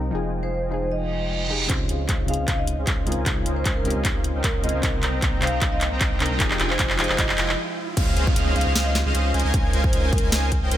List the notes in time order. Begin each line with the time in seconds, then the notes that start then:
Already playing: C2 C3 G3 A#3 C4 D#4 A#4 C5 D#5 G5 A#5
0.11 F1 F3 G#3 D#4 F4 D#5 G5 G#5
0.15 G#4
0.43 C5
0.69 F3 D#4 G#4 C5
0.91 D#5, reverse cymbal
1.49 F3 D#4 G4 G#4
1.67 C#2 C#3 C4 C#4 D#4 F4 G#4 C5 D#5 F5, kick, clap, closed hi-hat, riser
1.72 F4
1.89 C#2 C#4 G#4 C5 D#5 F5, closed hi-hat
2.09 C#2 C#4 G#4 C5 D#5 F5, kick, clap, closed hi-hat
2.26 C#2 C#3 C4 C#4 D#4 G#4 C5 D#5 F5, closed hi-hat
2.30 G#4, closed hi-hat
2.39 C#2 C#4 G#4 C5 D#5 F5
2.48 C#2 C#4 G#4 C5 D#5 F5, kick, clap, closed hi-hat
2.59 D#5
2.67 closed hi-hat
2.78 C#2 C#4 G#4 C5 D#5 F5
2.87 C#2 C#4 G#4 C5 D#5 F5, kick, clap, closed hi-hat
3.06 C#2 C#3 G#3 C4 C#4 D#4 F4 A#4 C5 D#5 F5 G#5, closed hi-hat
3.12 closed hi-hat
3.17 C#2 C#4 A#4 C5 D#5 F5 G#5
3.24 C#2 C#3 G#3 C4 C#4 D#4 A#4 C5 D#5 F5 G#5, kick, clap, closed hi-hat
3.28 F4
3.46 C#2 C#4 A#4 C5 D#5 F5 G#5, closed hi-hat
3.56 C5
3.66 C#2 C#4 A#4 C5 D#5 F5 G#5, kick, clap, closed hi-hat
3.76 A#4
3.83 C#2 C#3 G#3 C4 C#4 D#4 G4 A#4 C5 D#5 F5 G#5, closed hi-hat
3.90 closed hi-hat
3.96 C#2 C#4 A#4 C5 D#5 F5 G#5
4.05 C#2 C#4 A#4 C5 D#5 F5 G#5, kick, clap, closed hi-hat
4.24 closed hi-hat
4.35 C#2 C#4 A#4 C5 D#5 F5 G5
4.44 C#2 C#4 A#4 C5 D#5 F5 G5, kick, clap, closed hi-hat
4.63 C#2 C#3 G#3 C4 C#4 D#4 F4 A#4 C5 D#5 F5 G#5, closed hi-hat
4.69 closed hi-hat
4.74 C#2 C#4 A#4 C5 D#5 F5 G#5
4.81 C2 C3 G3 A#3 C4 D#4 A#4 C5 D#5 G5 A#5, kick, clap, closed hi-hat
5.03 C2 C4 C5 D#5 G5 A#5, clap, closed hi-hat
5.22 C2 C4 C5 D#5 G5 A#5, kick, clap, closed hi-hat
5.40 C2 C3 C4 D#4 C5 D#5 F5 G5 A#5, clap, closed hi-hat
5.44 C5, closed hi-hat
5.53 C2 C4 C5 D#5 G5 A#5
5.62 C2 C4 C5 D#5 G5 A#5, kick, clap, closed hi-hat
5.72 D#5
5.81 clap, closed hi-hat
5.92 C2 C4 C5 D#5 G5 A#5
6.01 C2 C4 C5 D#5 G5 A#5, kick, clap, closed hi-hat
6.19 C2 C3 C4 D#4 A#4 C5 D#5 G5 A#5, clap, closed hi-hat
6.26 closed hi-hat
6.31 C2 C4 C5 D#5 G5 A#5
6.38 F1 F3 G#3 D#4 F4 G4 G#4 D#5 G5 G#5, kick, clap, closed hi-hat
6.51 clap
6.59 F1 F3 F4 D#5 G5 G#5, clap, closed hi-hat
6.70 C5, clap
6.79 F1 F3 F4 D#5 G5 G#5, kick, clap, closed hi-hat
6.90 clap
6.97 F1 F3 D#4 F4 G4 C5 D#5 G5 G#5, clap, closed hi-hat
7.01 G#4, closed hi-hat
7.09 F1 F3 F4 D#5 G5 G#5, clap
7.18 F1 F3 F4 D#5 G5 G#5, kick, clap, closed hi-hat
7.29 clap
7.38 F1 F3 F4 D#5 G5 G#5, clap, closed hi-hat
7.49 clap
7.97 C#2 C#3 C4 C#4 D#4 F4 G#4 C5 D#5 F5, kick, closed hi-hat, crash, downlifter
8.17 C#2 C#4 G#4 C5 D#5 F5, closed hi-hat
8.27 kick
8.36 C#2 C#4 G#4 C5 D#5 F5, closed hi-hat
8.56 C#2 C#4 G#4 C5 D#5 F5, closed hi-hat
8.61 closed hi-hat
8.66 C#2 C#4 G#4 C5 D#5 F5
8.75 C#2 C#4 G#4 C5 D#5 F5, snare, closed hi-hat
8.86 D#5
8.95 snare, closed hi-hat
9.06 C#2 C#4 G#4 C5 D#5 F5
9.14 C#2 C#4 G#4 C5 D#5 F5, closed hi-hat
9.34 C#2 G#3 C#4 A#4 C5 D#5 F5 G#5, closed hi-hat
9.40 closed hi-hat
9.45 C#2 C#4 A#4 C5 D#5 F5 G#5
9.54 C#2 C#4 A#4 C5 D#5 F5 G#5, kick, closed hi-hat
9.73 C#2 C#4 A#4 C5 D#5 F5 G#5, closed hi-hat
9.84 C5, kick
9.93 C#2 C#4 A#4 C5 D#5 F5 G#5, closed hi-hat
10.04 A#4
10.13 C#2 C#4 A#4 C5 D#5 F5 G#5, kick, closed hi-hat
10.18 closed hi-hat
10.23 C#2 C#4 A#4 C5 D#5 F5 G#5
10.32 C#2 C#4 A#4 C5 D#5 F5 G#5, snare, closed hi-hat
10.52 kick, closed hi-hat
10.62 C#2 C#4 A#4 C5 D#5 F5 G5
10.71 C#2 C#4 A#4 C5 D#5 F5 G5, closed hi-hat